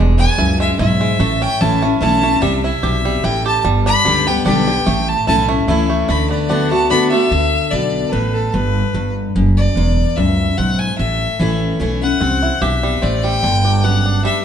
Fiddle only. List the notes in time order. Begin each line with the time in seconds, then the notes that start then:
0.18 G#5
0.60 E5
0.79 E5
1.42 G5
1.61 A5
2.01 A5
2.42 E5
2.63 E5
3.24 G5
3.46 A5
3.87 B5
4.27 G5
4.46 G5
5.08 A5
5.28 A5
6.09 B5
6.31 D5
6.49 F#5
6.71 A5
6.90 B5
7.11 E5
7.70 D5
8.08 A4 B4
8.33 A4
8.53 B4
9.57 D5
10.16 E5
10.57 F#5
10.78 G#5
10.98 E5
12.02 F#5
12.62 E5
13.02 D5
13.23 G5
13.85 F#5
14.25 E5